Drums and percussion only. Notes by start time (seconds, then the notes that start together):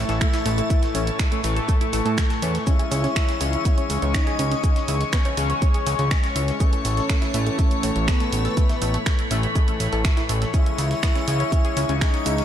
0.09 snare, closed hi-hat
0.21 finger snap, kick, closed hi-hat, shaker
0.33 snare, closed hi-hat, shaker
0.46 snare, open hi-hat
0.58 closed hi-hat, shaker
0.70 kick, closed hi-hat, shaker
0.83 snare, closed hi-hat
0.95 open hi-hat, shaker
1.07 closed hi-hat
1.19 finger snap, kick, snare, closed hi-hat, shaker
1.32 closed hi-hat
1.44 snare, open hi-hat, shaker
1.56 closed hi-hat
1.69 kick, closed hi-hat, shaker
1.81 closed hi-hat
1.93 snare, open hi-hat, shaker
2.06 closed hi-hat
2.18 finger snap, kick, snare, closed hi-hat, shaker
2.30 snare, closed hi-hat
2.42 open hi-hat, shaker
2.55 snare, closed hi-hat
2.67 kick, closed hi-hat, shaker
2.79 closed hi-hat
2.92 snare, open hi-hat, shaker
3.04 snare, closed hi-hat
3.16 finger snap, kick, snare, closed hi-hat, shaker
3.28 snare, closed hi-hat
3.41 open hi-hat, shaker
3.53 closed hi-hat
3.65 kick, closed hi-hat, shaker
3.78 closed hi-hat
3.90 open hi-hat, shaker
4.02 closed hi-hat
4.14 finger snap, kick, snare, closed hi-hat, shaker
4.27 snare, closed hi-hat
4.39 open hi-hat, shaker
4.51 snare, closed hi-hat
4.64 kick, closed hi-hat, shaker
4.76 snare, closed hi-hat
4.88 open hi-hat, shaker
5.01 closed hi-hat
5.13 finger snap, kick, snare, closed hi-hat, shaker
5.25 closed hi-hat
5.37 snare, open hi-hat, shaker
5.50 closed hi-hat
5.62 kick, closed hi-hat, shaker
5.74 closed hi-hat
5.87 snare, open hi-hat, shaker
5.99 closed hi-hat
6.11 finger snap, kick, snare, closed hi-hat, shaker
6.24 snare, closed hi-hat
6.36 open hi-hat, shaker
6.48 snare, closed hi-hat
6.60 kick, closed hi-hat, shaker
6.73 closed hi-hat
6.85 snare, open hi-hat, shaker
6.97 snare, closed hi-hat
7.09 finger snap, kick, snare, closed hi-hat, shaker
7.22 snare, closed hi-hat
7.34 open hi-hat, shaker
7.47 closed hi-hat
7.59 kick, closed hi-hat, shaker
7.71 closed hi-hat
7.83 open hi-hat, shaker
7.96 closed hi-hat
8.08 finger snap, kick, snare, closed hi-hat, shaker
8.20 snare, closed hi-hat
8.32 open hi-hat, shaker
8.45 snare, closed hi-hat
8.57 kick, closed hi-hat, shaker
8.69 snare, closed hi-hat
8.82 open hi-hat, shaker
8.94 closed hi-hat
9.06 finger snap, kick, snare, closed hi-hat, shaker
9.19 closed hi-hat
9.31 snare, open hi-hat, shaker
9.43 closed hi-hat
9.55 kick, closed hi-hat, shaker
9.68 closed hi-hat
9.80 snare, open hi-hat, shaker
9.93 closed hi-hat
10.05 finger snap, kick, snare, closed hi-hat, shaker
10.17 snare, closed hi-hat
10.29 open hi-hat, shaker
10.42 snare, closed hi-hat
10.54 kick, closed hi-hat, shaker
10.66 closed hi-hat
10.78 snare, open hi-hat, shaker
10.91 snare, closed hi-hat
11.03 finger snap, kick, snare, closed hi-hat, shaker
11.15 snare, closed hi-hat
11.28 open hi-hat, shaker
11.40 closed hi-hat
11.52 kick, closed hi-hat, shaker
11.65 closed hi-hat
11.77 open hi-hat, shaker
11.89 closed hi-hat
12.01 finger snap, kick, snare, closed hi-hat, shaker
12.14 snare, closed hi-hat
12.26 open hi-hat, shaker
12.38 snare, closed hi-hat